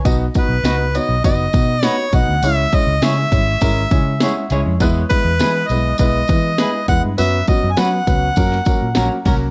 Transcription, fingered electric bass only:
\new Staff \with { instrumentName = "Fingered electric bass" } { \clef bass \time 4/4 \key b \major \tempo 4 = 101 b,,8 r16 b,,16 cis,8. b,,16 fis,,8 b,8. r16 b,,16 d,16 | cis,8 r16 cis,16 cis8 gis,,8 gis,,8 cis8. r16 cis,16 eis,16 | e,8 r16 e,16 e8 b,,8 b,,8 e8. r16 e,16 g,16 | fis,8 r16 fis,16 fis8 cis,8 fis,8 r16 ais,16 ais,,16 r16 c,8 | }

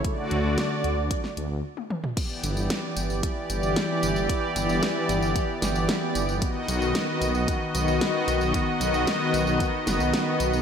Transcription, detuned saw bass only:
\new Staff \with { instrumentName = "Detuned saw bass" } { \clef bass \time 4/4 \key g \lydian \tempo 4 = 113 r8 d,16 d,16 r8 d,16 d,16 r8 d,16 d,16 r4 | r8 g,,16 g,,16 r8 g,,16 g,,16 r8 g,,16 g,,16 r8 g,,16 g,,16 | r8 g,,16 g,,16 r8 g,,16 g,,16 r8 g,,16 g,,16 r8 g,,16 g,,16 | r8 b,,16 b,,16 r8 b,,16 b,,16 r8 b,,16 b,,16 r8 b,,16 b,,16 |
r8 b,,16 b,,16 r8 b,,16 b,,16 r8 fis,,16 b,,16 r8 b,,16 b,,16 | }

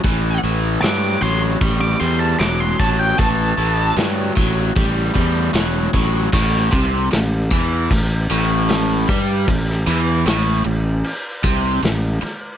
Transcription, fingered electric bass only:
\new Staff \with { instrumentName = "Fingered electric bass" } { \clef bass \time 4/4 \key a \minor \tempo 4 = 76 a,,8 a,,8 g,8 a,,8 a,,8 e,8 e,,8 a,,8 | a,,8 a,,8 g,8 a,,8 a,,8 e,8 e,,8 a,,8 | a,,8 c,8 a,,8 e,8 a,,8 a,,4 g,8 | a,,8 e,8 a,,8 a,,8 r8 c,8 a,,8 r8 | }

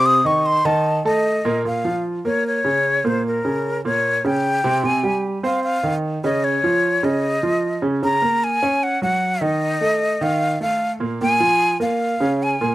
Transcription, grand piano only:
\new Staff \with { instrumentName = "Grand piano" } { \time 4/4 \key bes \minor \tempo 4 = 151 <c c' c''>8 <ees ees' ees''>4 <ees ees' ees''>4 <a a' a''>4 <bes, bes bes'>8 | <bes, bes>8 <f f'>4 <bes bes'>4 <des des'>4 <bes, bes>8~ | <bes, bes>8 <des des'>4 <bes, bes>4 <des des'>4 <c c'>8 | <c c'>8 <g g'>4 <c' c''>4 <ees ees'>4 <des des'>8~ |
<des des'>8 <f f'>4 <des des'>4 <f f'>4 <des des'>8 | <des des'>8 <bes bes'>4 <des' des''>4 <ges ges'>4 <ees ees'>8~ | <ees ees'>8 <a a'>4 <ees ees'>4 <a a'>4 <bes, bes>8 | <bes, bes>8 <f f'>4 <bes bes'>4 <des des'>4 <bes, bes>8 | }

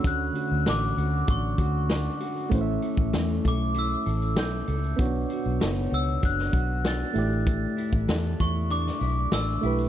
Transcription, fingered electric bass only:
\new Staff \with { instrumentName = "Fingered electric bass" } { \clef bass \time 4/4 \key a \mixolydian \tempo 4 = 97 d,8 r16 d,16 a,,8 d,8 a,,8 d,4 r8 | a,,8 r16 a,,16 e,8 b,,4 a,,8 b,,8 cis,8 | b,,8 r16 b,,16 fis,,8 cis,8 fis,,8 b,,4 a,,8~ | a,,8 r16 a,,16 e,8 e,4 b,,8 a,,8 b,,8 | }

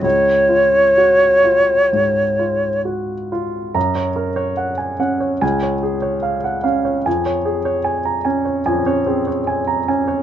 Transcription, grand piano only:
\new Staff \with { instrumentName = "Grand piano" } { \time 4/4 \key des \major \tempo 4 = 73 << { r1 | bes''16 des''16 bes'16 des''16 ges''16 aes''16 ges''16 des''16 aes''16 des''16 aes'16 des''16 f''16 ges''16 f''16 des''16 | aes''16 des''16 aes'16 des''16 aes''16 bes''16 aes''16 des''16 aes''16 des''16 aes'16 des''16 aes''16 bes''16 aes''16 des''16 | } \\ { des,8 f'8 ges'8 f'8 aes,8 f'8 ges'8 f'8 | ges,4. des'8 des,4. des'8 | f,4. des'8 f,16 des'16 c'16 r8. des'8 | } >> }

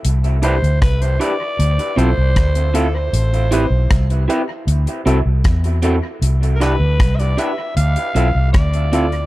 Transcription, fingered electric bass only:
\new Staff \with { instrumentName = "Fingered electric bass" } { \clef bass \time 4/4 \key c \major \tempo 4 = 78 c,8. d,16 c,8 r8 d,16 r16 b,,16 c,16 d,4 | a,,8. b,,16 c,8 r8 d,16 r16 c,16 c,16 e,8. r16 | c,8. d,16 c,8 r8 d,16 r16 b,,16 c,16 d,4 | }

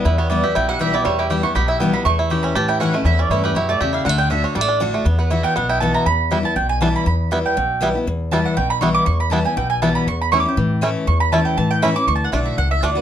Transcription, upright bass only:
\new Staff \with { instrumentName = "Upright bass" } { \clef bass \time 4/4 \key e \dorian \tempo 4 = 240 e,2 b,,2 | e,2 b,,2 | e,2 a,2 | e,4 g,4 fis,4 e,4 |
d,2 a,,2 | e,2 b,,2 | e,2 b,,2 | e,2 b,,2 |
e,2 b,,2 | e,2 b,,2 | e,2 a,2 | e,2 a,2 |
d,4 b,,4 cis,4 d,4 | }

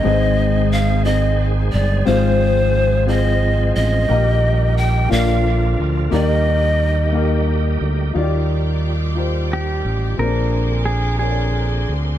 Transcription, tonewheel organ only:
<<
  \new Staff \with { instrumentName = "Tonewheel organ" } { \time 6/8 \key ees \major \tempo 4. = 59 << { aes'2.~ | aes'2. | g'4. f'4. | g'2. |
f'2. | aes'2. | } \\ { c'2.~ | c'2. | bes2.~ | bes2. |
d''2. | c'2. | } >> }
  \new Staff \with { instrumentName = "Tonewheel organ" } { \clef bass \time 6/8 \key ees \major <ees aes>2. | <f aes>2. | <ees g>4. <d f>4. | <g ees'>2. |
<ees g>2. | <d bes>2. | }
>>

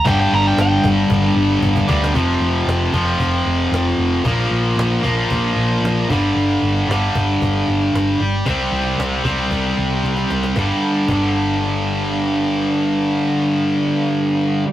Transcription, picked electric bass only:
\new Staff \with { instrumentName = "Picked electric bass" } { \clef bass \time 4/4 \key f \lydian \tempo 4 = 114 g,,8 g,,8 g,,8 g,,8 g,,8 g,,8 g,,8 d,8 | f,,8 f,,8 f,,8 f,,8 f,,8 f,,8 f,,8 f,,8 | bes,,8 bes,,8 bes,,8 bes,,8 bes,,8 bes,,8 bes,,8 g,,8 | g,,8 g,,8 g,,8 g,,8 g,,8 g,,8 g,,8 g,,8 |
c,8 c,8 c,8 c,8 c,8 c,8 c,8 c,8 | g,,8 r8 g,,2.~ | g,,1 | }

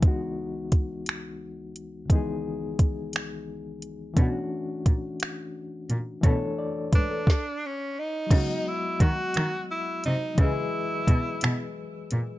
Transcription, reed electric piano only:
<<
  \new Staff \with { instrumentName = "Reed electric piano" } { \time 6/8 \key cis \minor \tempo 4. = 58 r2. | r2. | r2. | r8 d''8 b'16 a'8 r4 r16 |
r2. | r2. | }
  \new Staff \with { instrumentName = "Reed electric piano" } { \time 6/8 \key cis \minor <cis, e gis b dis' fis'>2. | <cis, dis e gis b dis' gis'>2. | <e a cis' d' fis'>2. | <e a d' a' cis''>4. r4. |
<fis gis b fis' dis''>2. | <e gis gis' b' dis''>2. | }
>>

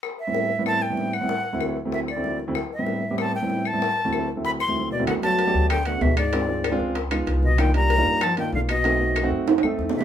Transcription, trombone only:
\new Staff \with { instrumentName = "Trombone" } { \clef bass \time 4/4 \key g \major \tempo 4 = 191 r1 | r1 | r1 | r2. r8 b,8 |
d8 fis4. d8 d8 b,8 aes,8~ | aes,4. r2 b,8 | ees8 g4. f8 ees8 d8 b,8~ | b,4. r2 c8 | }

